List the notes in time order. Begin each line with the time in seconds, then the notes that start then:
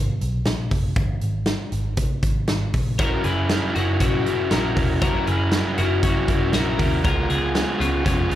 Already playing: G#1
0.21 B1, closed hi-hat
0.45 A#1, snare, closed hi-hat
0.71 F#1, kick, open hi-hat
0.96 G#1, kick, closed hi-hat
1.21 G#1, closed hi-hat
1.46 snare, closed hi-hat
1.72 G#1, closed hi-hat
1.97 kick, closed hi-hat
2.23 G#1, kick, closed hi-hat
2.48 G#1, snare, closed hi-hat
2.73 A#1, kick, open hi-hat
2.99 F#1 F#3 C#4 E4 F#4 A#4, kick, closed hi-hat
3.24 F#1 E4 G#4 A#4, closed hi-hat
3.28 C#4
3.50 F#3 C#4 E4, snare, closed hi-hat
3.54 A#4
3.75 F#1 C#4 D#4 E4 F#4 A#4, closed hi-hat
4.00 A#1 F#3 C#4 E4 F#4 A#4, kick, closed hi-hat
4.26 F#1 C#4 E4 A#4, closed hi-hat
4.50 A#1 F#3 C#4 E4 F#4 A#4, snare, closed hi-hat
4.75 E1 C#4 E4 A#4, kick, open hi-hat
5.02 F#1 F#3 C#4 E4 F#4 A#4, kick, closed hi-hat
5.26 F#1 C#4 E4 G#4 A#4, closed hi-hat
5.52 F#3 C#4 E4 A#4, snare, closed hi-hat
5.78 F#1 C#4 D#4 E4 F#4 A#4, closed hi-hat
6.03 F#3 C#4 E4 F#4 A#4, kick, closed hi-hat
6.28 F#1 C#4 E4 A#4, kick, closed hi-hat
6.53 A#1 F#3 C#4 E4 F#4 A#4, snare, closed hi-hat
6.79 D#2 C#4 E4 A#4, kick, open hi-hat
7.03 C#2 C#3 G#3 B3 F4 G#4 A#4, kick, closed hi-hat
7.28 C#2 B3 F4 G#4, closed hi-hat
7.54 G#3 B3 F4 G#4, snare, closed hi-hat
7.78 C#2 B3 C#4 F4 G#4, closed hi-hat
8.03 F2 C#3 G#3 B3 C#4 F4 G#4, kick, closed hi-hat
8.29 C#2 F4 G#4, closed hi-hat